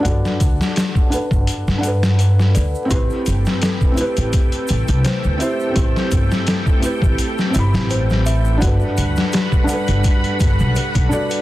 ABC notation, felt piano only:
X:1
M:4/4
L:1/16
Q:"Swing 16ths" 1/4=84
K:Ador
V:1 name="Felt piano"
[DAdf]6 [DABf]4 [DABf]6 | [CEGB]6 [CEGB]8 [CEGc] z | [CEGc]6 [CEGB]4 [CEGb]6 | [DABf]6 [DABf]8 [DFAd] z |]